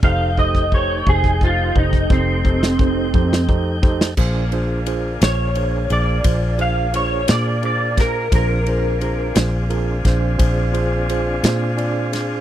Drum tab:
CC |------------------------|x-----------------------|------------------------|
RD |------------------------|--x-x-x-x-x-x-x-x-x-x-x-|x-x-x-x-x-x-x-x-x-x-x-x-|
SD |---------------o---o---o|------o-----------o---o-|------o---o-------o---o-|
BD |o-ooo-ooo-ooo-o-o-o-o-o-|o-----------o---------o-|o---------o-o-----------|